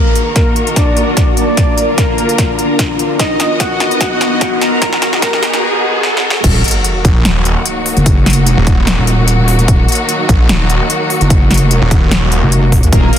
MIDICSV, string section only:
0, 0, Header, 1, 2, 480
1, 0, Start_track
1, 0, Key_signature, -6, "minor"
1, 0, Tempo, 405405
1, 1864, Time_signature, 4, 2, 24, 8
1, 15612, End_track
2, 0, Start_track
2, 0, Title_t, "String section"
2, 0, Program_c, 0, 48
2, 0, Note_on_c, 0, 51, 81
2, 0, Note_on_c, 0, 58, 74
2, 0, Note_on_c, 0, 66, 72
2, 0, Note_on_c, 0, 70, 85
2, 1844, Note_off_c, 0, 51, 0
2, 1844, Note_off_c, 0, 66, 0
2, 1844, Note_off_c, 0, 70, 0
2, 1863, Note_on_c, 0, 50, 77
2, 1863, Note_on_c, 0, 65, 72
2, 1864, Note_on_c, 0, 70, 86
2, 3745, Note_off_c, 0, 58, 0
2, 3764, Note_off_c, 0, 50, 0
2, 3764, Note_off_c, 0, 65, 0
2, 3765, Note_off_c, 0, 70, 0
2, 3783, Note_on_c, 0, 51, 82
2, 3783, Note_on_c, 0, 59, 74
2, 3783, Note_on_c, 0, 66, 75
2, 3783, Note_on_c, 0, 75, 87
2, 5684, Note_off_c, 0, 59, 0
2, 5684, Note_off_c, 0, 75, 0
2, 5702, Note_on_c, 0, 68, 88
2, 5703, Note_on_c, 0, 59, 78
2, 7585, Note_off_c, 0, 51, 0
2, 7585, Note_off_c, 0, 66, 0
2, 7604, Note_off_c, 0, 59, 0
2, 7604, Note_off_c, 0, 68, 0
2, 7623, Note_on_c, 0, 51, 80
2, 7623, Note_on_c, 0, 54, 75
2, 7623, Note_on_c, 0, 58, 76
2, 7623, Note_on_c, 0, 66, 90
2, 15282, Note_off_c, 0, 66, 0
2, 15301, Note_on_c, 0, 68, 93
2, 15612, Note_off_c, 0, 51, 0
2, 15612, Note_off_c, 0, 54, 0
2, 15612, Note_off_c, 0, 58, 0
2, 15612, Note_off_c, 0, 68, 0
2, 15612, End_track
0, 0, End_of_file